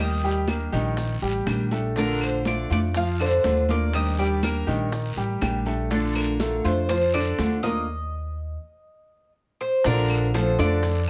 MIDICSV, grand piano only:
0, 0, Header, 1, 2, 480
1, 0, Start_track
1, 0, Key_signature, -2, "major"
1, 0, Tempo, 493016
1, 1912, Time_signature, 4, 2, 24, 8
1, 10804, End_track
2, 0, Start_track
2, 0, Title_t, "Grand piano"
2, 0, Program_c, 0, 0
2, 0, Note_on_c, 0, 58, 67
2, 0, Note_on_c, 0, 70, 66
2, 141, Note_off_c, 0, 58, 0
2, 144, Note_off_c, 0, 70, 0
2, 234, Note_on_c, 0, 55, 69
2, 237, Note_on_c, 0, 67, 79
2, 429, Note_off_c, 0, 55, 0
2, 431, Note_off_c, 0, 67, 0
2, 473, Note_on_c, 0, 58, 60
2, 474, Note_on_c, 0, 70, 64
2, 669, Note_off_c, 0, 58, 0
2, 669, Note_off_c, 0, 70, 0
2, 711, Note_on_c, 0, 51, 78
2, 712, Note_on_c, 0, 63, 86
2, 1105, Note_off_c, 0, 51, 0
2, 1106, Note_off_c, 0, 63, 0
2, 1189, Note_on_c, 0, 55, 72
2, 1193, Note_on_c, 0, 67, 71
2, 1584, Note_off_c, 0, 55, 0
2, 1586, Note_off_c, 0, 67, 0
2, 1669, Note_on_c, 0, 57, 71
2, 1674, Note_on_c, 0, 69, 72
2, 1867, Note_off_c, 0, 57, 0
2, 1870, Note_off_c, 0, 69, 0
2, 1915, Note_on_c, 0, 50, 69
2, 1919, Note_on_c, 0, 62, 66
2, 2308, Note_off_c, 0, 50, 0
2, 2310, Note_off_c, 0, 62, 0
2, 2394, Note_on_c, 0, 57, 58
2, 2399, Note_on_c, 0, 69, 56
2, 2788, Note_off_c, 0, 57, 0
2, 2791, Note_off_c, 0, 69, 0
2, 2877, Note_on_c, 0, 53, 63
2, 2882, Note_on_c, 0, 65, 69
2, 3073, Note_off_c, 0, 53, 0
2, 3076, Note_off_c, 0, 65, 0
2, 3117, Note_on_c, 0, 50, 78
2, 3120, Note_on_c, 0, 62, 80
2, 3510, Note_off_c, 0, 50, 0
2, 3512, Note_off_c, 0, 62, 0
2, 3596, Note_on_c, 0, 58, 64
2, 3599, Note_on_c, 0, 70, 72
2, 3989, Note_off_c, 0, 58, 0
2, 3991, Note_off_c, 0, 70, 0
2, 4075, Note_on_c, 0, 55, 78
2, 4079, Note_on_c, 0, 67, 75
2, 4272, Note_off_c, 0, 55, 0
2, 4274, Note_off_c, 0, 67, 0
2, 4315, Note_on_c, 0, 58, 64
2, 4319, Note_on_c, 0, 70, 70
2, 4512, Note_off_c, 0, 58, 0
2, 4515, Note_off_c, 0, 70, 0
2, 4552, Note_on_c, 0, 51, 73
2, 4556, Note_on_c, 0, 63, 74
2, 4947, Note_off_c, 0, 51, 0
2, 4950, Note_off_c, 0, 63, 0
2, 5036, Note_on_c, 0, 55, 74
2, 5038, Note_on_c, 0, 67, 68
2, 5429, Note_off_c, 0, 55, 0
2, 5431, Note_off_c, 0, 67, 0
2, 5511, Note_on_c, 0, 57, 76
2, 5514, Note_on_c, 0, 69, 67
2, 5710, Note_off_c, 0, 57, 0
2, 5712, Note_off_c, 0, 69, 0
2, 5750, Note_on_c, 0, 50, 77
2, 5752, Note_on_c, 0, 62, 76
2, 6146, Note_off_c, 0, 50, 0
2, 6147, Note_off_c, 0, 62, 0
2, 6234, Note_on_c, 0, 57, 66
2, 6236, Note_on_c, 0, 69, 65
2, 6628, Note_off_c, 0, 57, 0
2, 6629, Note_off_c, 0, 69, 0
2, 6714, Note_on_c, 0, 53, 70
2, 6717, Note_on_c, 0, 65, 66
2, 6911, Note_off_c, 0, 53, 0
2, 6913, Note_off_c, 0, 65, 0
2, 6952, Note_on_c, 0, 50, 83
2, 6957, Note_on_c, 0, 62, 89
2, 7347, Note_off_c, 0, 50, 0
2, 7349, Note_off_c, 0, 62, 0
2, 7436, Note_on_c, 0, 58, 72
2, 7438, Note_on_c, 0, 70, 78
2, 7632, Note_off_c, 0, 58, 0
2, 7633, Note_off_c, 0, 70, 0
2, 9588, Note_on_c, 0, 50, 72
2, 9593, Note_on_c, 0, 62, 76
2, 9597, Note_on_c, 0, 74, 82
2, 9981, Note_off_c, 0, 50, 0
2, 9984, Note_off_c, 0, 62, 0
2, 9986, Note_off_c, 0, 74, 0
2, 10070, Note_on_c, 0, 53, 70
2, 10073, Note_on_c, 0, 65, 69
2, 10075, Note_on_c, 0, 69, 66
2, 10265, Note_off_c, 0, 53, 0
2, 10267, Note_off_c, 0, 65, 0
2, 10269, Note_off_c, 0, 69, 0
2, 10306, Note_on_c, 0, 50, 81
2, 10310, Note_on_c, 0, 62, 74
2, 10312, Note_on_c, 0, 74, 83
2, 10699, Note_off_c, 0, 50, 0
2, 10701, Note_off_c, 0, 62, 0
2, 10702, Note_off_c, 0, 74, 0
2, 10804, End_track
0, 0, End_of_file